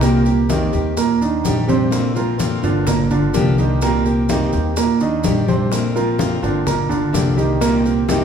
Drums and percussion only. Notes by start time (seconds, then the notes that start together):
0.01 high bongo, high conga, maracas
0.26 high conga, maracas
0.50 high bongo, high conga, maracas
0.73 high bongo, high conga, maracas
0.97 high bongo, high conga, maracas
1.21 high bongo, high conga, maracas
1.45 high bongo, low bongo, high conga, maracas
1.69 high bongo, high conga, maracas
1.92 high bongo, high conga, maracas
2.16 high conga, maracas
2.39 high bongo, high conga, maracas
2.63 high bongo, high conga, maracas
2.87 high bongo, high conga, low conga, maracas
3.11 high bongo, high conga, low conga, maracas
3.34 high bongo, low bongo, high conga, maracas
3.58 high bongo, high conga, maracas
3.82 high bongo, high conga, maracas
4.05 high conga, maracas
4.29 high bongo, high conga, maracas
4.53 high bongo, high conga, maracas
4.77 high bongo, high conga, maracas
5.00 high bongo, high conga, maracas
5.24 high bongo, low bongo, high conga, maracas
5.48 high bongo, high conga, maracas
5.72 high bongo, high conga, maracas
5.96 high conga, maracas
6.19 high bongo, high conga, maracas
6.43 high bongo, high conga, maracas
6.67 high bongo, high conga, low conga, maracas
6.90 high bongo, high conga, low conga, maracas
7.14 high bongo, low bongo, high conga, maracas
7.37 high bongo, high conga, maracas
7.61 high bongo, high conga, maracas
7.85 high conga, maracas
8.08 high bongo, high conga, maracas